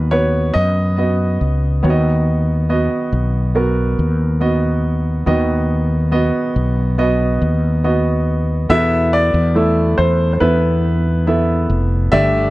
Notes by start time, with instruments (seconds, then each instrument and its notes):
Already playing: fretless electric bass D#2, grand piano D#3 B3 F#4 B4 D#5
0.11 grand piano B3 F#4 B4 C#5
0.54 fretless electric bass F#2, grand piano D#5
0.98 grand piano B3 F#4 D#5
1.41 fretless electric bass C#2
1.83 fretless electric bass D#2, grand piano D#3 B3 F#4 C#5
1.90 grand piano D#5
2.69 grand piano B3 F#4 D#5
3.13 fretless electric bass B1
3.55 grand piano B3 F#4 A#4
3.99 fretless electric bass D#2
4.40 grand piano B3 F#4 D#5
5.26 fretless electric bass D#2, grand piano D#3 B3 F#4 D#5
6.12 grand piano B3 F#4 D#5
6.56 fretless electric bass B1
6.98 grand piano B3 F#4 D#5
7.42 fretless electric bass D#2
7.84 grand piano B3 F#4 D#5
8.69 fretless electric bass E2, grand piano B2 B3 E4 A4 E5
9.13 grand piano D5
9.34 fretless electric bass E2
9.55 grand piano A3 E4 A4 E5
9.98 fretless electric bass E2, grand piano C5
10.33 grand piano C5
10.40 fretless electric bass E2, grand piano B3 E4 A4 B4 E5
11.27 grand piano B3 E4 A4 E5
11.70 fretless electric bass F1
12.12 fretless electric bass G1, grand piano G2 D3 A3 D4 G4 D5 E5